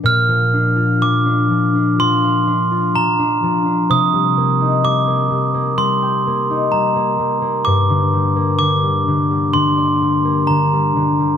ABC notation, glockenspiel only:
X:1
M:4/4
L:1/16
Q:1/4=64
K:Bb
V:1 name="Glockenspiel"
f'4 d'4 c'4 b3 z | e'4 d'4 c'4 b3 z | d'4 d'4 c'4 b3 z |]